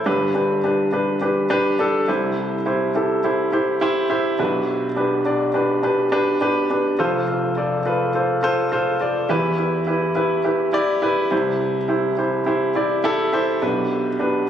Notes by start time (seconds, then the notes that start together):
0.06 G1 G2 D4 G4 B4
0.34 D4 G4 B4
0.64 D4 G4 B4
0.93 D4 G4 B4
1.21 D4 G4 B4
1.50 D4 G4 B4
1.79 D4 G4 A4
2.08 C2 C3 E4 G4 C5
2.66 E4 G4 C5
2.95 E4 G4 A4
3.24 E4 G4 C5
3.52 E4 G4 C5
3.81 E4 G4 C5
4.10 E4 G4 C5
4.39 B1 B2 D4 G4 B4
4.96 D4 G4 B4
5.25 D4 G4 D5
5.54 D4 G4 B4
5.83 D4 G4 B4
6.12 D4 G4 B4
6.41 D4 G4 B4
6.70 D4 G4 B4
6.99 F1 F2 F4 A4 C5
7.28 F4 A4 C5
7.57 F4 A4 D5
7.86 F4 A4 B4
8.14 F4 A4 C5
8.43 F4 A4 C5
8.72 F4 A4 C5
9.01 F4 A4 D5
9.29 E2 E3 E4 G4 B4
9.58 E4 G4 B4
9.87 E4 G4 B4
10.15 E4 G4 B4
10.44 E4 G4 B4
10.73 E4 G4 D5
11.02 E4 G4 B4
11.31 C2 C3 E4 G4 C5
11.88 E4 G4 C5
12.17 E4 G4 C5
12.46 E4 G4 C5
12.75 E4 G4 D5
13.04 E4 G4 A4
13.33 E4 G4 C5
13.62 B1 B2 D4 G4 B4
14.19 D4 G4 B4